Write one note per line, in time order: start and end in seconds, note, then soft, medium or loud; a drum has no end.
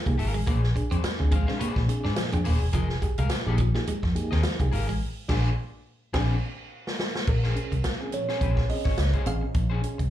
0.06 0.17 C2 medium
0.06 0.20 A#3 medium
0.06 0.14 A#3 medium
0.06 0.20 D#4 medium
0.06 0.17 G4 medium
0.06 0.17 G#4 medium
0.06 muted clean electric guitar stroke soft
0.06 kick medium
0.06 closed hi-hat soft
0.18 0.33 G#1 loud
0.18 0.39 G#4 medium
0.18 0.34 A#4 medium
0.18 0.34 F5 medium
0.18 muted clean electric guitar stroke soft
0.18 open hi-hat medium
0.34 0.45 A1 medium
0.34 0.42 G#3 medium
0.34 muted clean electric guitar stroke soft
0.46 0.71 A#1 loud
0.46 0.64 A#2 medium
0.46 0.64 F3 medium
0.46 0.57 A#3 medium
0.46 0.66 G#4 medium
0.46 0.63 C5 loud
0.46 0.61 D5 loud
0.46 kick loud
0.46 closed hi-hat medium
0.63 muted clean electric guitar stroke soft
0.63 snare soft
0.75 0.92 D4 medium
0.75 0.93 G#4 medium
0.75 muted clean electric guitar stroke soft
0.75 kick medium
0.75 closed hi-hat medium
0.91 1.02 F2 medium
0.91 0.99 C4 medium
0.91 1.02 G#4 medium
0.91 1.03 C5 medium
0.91 1.04 D5 medium
0.91 closed hi-hat soft
1.04 muted clean electric guitar stroke soft
1.04 muted fingered electric bass stroke soft
1.04 snare loud
1.04 closed hi-hat loud
1.19 1.44 D2 medium
1.19 1.34 C4 medium
1.19 1.34 D4 medium
1.19 1.34 G#4 medium
1.19 muted clean electric guitar stroke soft
1.31 1.50 A#2 medium
1.31 1.50 F3 medium
1.31 1.42 G#3 medium
1.31 1.47 G#4 medium
1.31 1.46 C5 medium
1.31 1.45 F5 medium
1.31 kick medium
1.31 closed hi-hat medium
1.46 1.55 G#3 medium
1.46 1.62 C4 medium
1.46 1.60 D4 medium
1.46 1.58 G#4 medium
1.46 1.60 G#4 medium
1.46 1.58 C5 medium
1.46 1.60 F5 medium
1.46 snare soft
1.59 1.70 A#3 medium
1.59 1.67 D4 soft
1.59 1.81 G#4 medium
1.59 1.67 G#4 medium
1.59 1.81 C5 medium
1.59 1.81 D5 medium
1.59 muted fingered electric bass stroke medium
1.59 closed hi-hat medium
1.76 1.87 A#2 loud
1.76 1.90 A#2 medium
1.76 1.90 F3 medium
1.76 muted clean electric guitar stroke soft
1.76 kick loud
1.76 snare soft
1.89 2.06 C4 medium
1.89 2.06 D4 medium
1.89 2.06 G#4 medium
1.89 muted clean electric guitar stroke soft
1.89 closed hi-hat medium
2.04 2.16 G#2 medium
2.04 2.12 D4 medium
2.04 2.15 G#4 medium
2.04 2.16 C5 medium
2.04 2.16 D5 medium
2.04 snare soft
2.16 2.34 A#2 medium
2.16 2.34 F3 medium
2.16 muted clean electric guitar stroke soft
2.16 snare loud
2.16 closed hi-hat loud
2.32 2.44 F2 medium
2.32 2.47 C4 medium
2.32 2.41 C4 medium
2.32 2.44 D4 medium
2.32 2.44 G#4 medium
2.32 muted clean electric guitar stroke medium
2.32 closed hi-hat medium
2.44 2.59 D#1 loud
2.44 2.55 A#3 medium
2.44 2.51 D4 soft
2.44 2.64 G#4 medium
2.44 2.52 G#4 soft
2.44 2.61 C5 medium
2.44 2.59 D5 medium
2.44 open hi-hat medium
2.61 2.72 E1 medium
2.61 muted clean electric guitar stroke soft
2.73 2.98 F1 medium
2.73 2.91 F3 medium
2.73 2.84 F3 medium
2.73 2.93 G#4 medium
2.73 2.89 A#4 medium
2.73 2.88 D#5 medium
2.73 kick loud
2.73 closed hi-hat medium
2.89 muted clean electric guitar stroke soft
2.89 snare soft
3.02 3.19 G4 medium
3.02 3.19 G#4 medium
3.02 muted clean electric guitar stroke soft
3.02 kick medium
3.02 closed hi-hat medium
3.18 3.29 C2 medium
3.18 3.26 G#3 medium
3.18 3.30 G#4 soft
3.18 3.30 A#4 medium
3.18 3.31 F5 medium
3.18 closed hi-hat medium
3.29 muted fingered electric bass stroke soft
3.29 muted clean electric guitar stroke soft
3.29 snare loud
3.29 closed hi-hat loud
3.46 3.71 A#1 loud
3.46 3.60 A#3 medium
3.46 3.60 D#4 medium
3.46 3.60 G4 medium
3.46 3.61 G#4 medium
3.46 3.59 G#4 medium
3.46 3.59 A#4 medium
3.46 3.60 D#5 medium
3.58 3.76 F3 medium
3.58 3.69 F3 loud
3.58 muted clean electric guitar stroke soft
3.58 kick medium
3.58 closed hi-hat medium
3.74 3.83 F3 medium
3.74 3.88 A#3 medium
3.74 3.89 D#4 medium
3.74 3.86 G4 medium
3.74 3.86 G#4 medium
3.74 muted clean electric guitar stroke medium
3.74 snare soft
3.87 3.97 G#3 medium
3.87 3.94 G4 soft
3.87 3.94 G#4 soft
3.87 muted clean electric guitar stroke soft
3.87 muted fingered electric bass stroke medium
3.87 closed hi-hat medium
4.03 4.14 F2 medium
4.03 4.17 F3 medium
4.03 muted clean electric guitar stroke soft
4.03 kick medium
4.03 snare soft
4.15 4.32 A#3 medium
4.15 4.33 D#4 medium
4.15 4.33 G4 medium
4.15 4.33 G#4 medium
4.15 closed hi-hat medium
4.31 4.42 D#2 medium
4.31 4.40 C4 medium
4.31 4.42 G#4 medium
4.31 4.43 A#4 medium
4.31 4.44 D#5 medium
4.31 snare soft
4.43 4.61 F3 medium
4.43 muted clean electric guitar stroke soft
4.43 snare loud
4.43 closed hi-hat loud
4.60 4.70 C2 medium
4.60 4.74 A#3 medium
4.60 4.68 A#3 medium
4.60 4.74 D#4 medium
4.60 4.71 G4 medium
4.60 4.71 G#4 medium
4.60 muted clean electric guitar stroke soft
4.60 kick medium
4.60 closed hi-hat soft
4.72 4.86 G#1 loud
4.72 4.79 G4 soft
4.72 4.91 G#4 medium
4.72 4.79 G#4 soft
4.72 4.87 A#4 medium
4.72 4.87 F5 medium
4.72 muted clean electric guitar stroke soft
4.72 open hi-hat medium
4.88 4.99 A1 medium
4.88 4.96 G#3 medium
4.88 muted clean electric guitar stroke medium
5.28 5.49 A#1 loud
5.28 5.49 D4 medium
5.28 5.49 G#4 loud
5.28 5.50 G#4 loud
5.28 5.49 C5 loud
5.28 5.49 D5 medium
5.28 kick loud
5.28 snare medium
5.28 crash medium
6.13 6.34 A#1 loud
6.13 6.34 C4 loud
6.13 6.34 D4 loud
6.13 6.34 G#4 medium
6.13 6.34 G#4 loud
6.13 6.34 C5 medium
6.13 6.35 D5 loud
6.13 kick loud
6.13 snare loud
6.13 crash medium
6.87 snare medium
6.99 snare loud
7.15 snare medium
7.27 7.52 A#1 medium
7.27 7.45 A#2 medium
7.27 7.45 F3 medium
7.27 8.16 A#4 medium
7.27 muted clean electric guitar stroke soft
7.27 kick loud
7.27 crash medium
7.43 7.55 C#4 medium
7.43 7.56 G#4 medium
7.43 7.57 C5 medium
7.43 snare soft
7.56 7.73 C#4 medium
7.56 7.73 G#4 medium
7.56 muted clean electric guitar stroke soft
7.56 closed hi-hat medium
7.72 7.83 C2 medium
7.72 muted clean electric guitar stroke soft
7.72 kick medium
7.72 closed hi-hat soft
7.84 muted clean electric guitar stroke soft
7.84 snare loud
7.84 closed hi-hat medium
8.00 8.14 C4 medium
8.00 8.15 C#4 medium
8.00 8.15 G#4 medium
8.00 muted clean electric guitar stroke soft
8.12 8.30 A#2 medium
8.12 8.30 F3 medium
8.12 8.72 C#5 medium
8.12 closed hi-hat medium
8.28 8.43 C4 medium
8.28 8.40 C#4 medium
8.28 8.40 G#4 medium
8.28 8.41 G#4 medium
8.28 8.41 C5 medium
8.28 snare soft
8.41 8.66 A#1 loud
8.41 8.62 C#4 medium
8.41 8.48 C#4 soft
8.41 8.48 G#4 soft
8.41 8.63 G#4 medium
8.41 8.63 C5 medium
8.41 kick medium
8.41 closed hi-hat medium
8.57 8.71 A#2 medium
8.57 8.71 F3 medium
8.57 kick medium
8.57 snare soft
8.69 8.87 C4 medium
8.69 8.87 C#4 medium
8.69 8.87 G#4 medium
8.69 9.23 D#5 medium
8.69 muted clean electric guitar stroke soft
8.69 open hi-hat medium
8.85 8.96 G#1 medium
8.85 8.96 C#4 soft
8.85 8.97 G#4 medium
8.85 8.98 C#5 medium
8.85 kick loud
8.85 snare soft
8.97 9.12 C#2 loud
8.97 muted clean electric guitar stroke soft
8.97 snare loud
8.97 closed hi-hat loud
9.13 9.25 C#4 medium
9.13 9.26 G#4 medium
9.13 9.26 C5 medium
9.13 kick medium
9.13 closed hi-hat soft
9.26 9.40 A1 medium
9.26 9.44 C4 medium
9.26 9.44 C#4 medium
9.26 9.44 G#4 medium
9.26 10.10 F5 loud
9.26 muted clean electric guitar stroke soft
9.26 closed hi-hat medium
9.41 muted clean electric guitar stroke medium
9.54 9.79 A#1 medium
9.54 9.73 A#2 medium
9.54 9.73 F3 medium
9.54 muted clean electric guitar stroke soft
9.54 kick loud
9.54 closed hi-hat medium
9.70 9.81 C#4 medium
9.70 9.82 G#4 medium
9.70 9.82 C5 medium
9.82 10.01 C#4 medium
9.82 10.01 G#4 medium
9.82 muted clean electric guitar stroke soft
9.82 closed hi-hat medium
9.98 10.10 C2 medium
9.98 muted clean electric guitar stroke soft
9.98 kick medium
9.98 closed hi-hat soft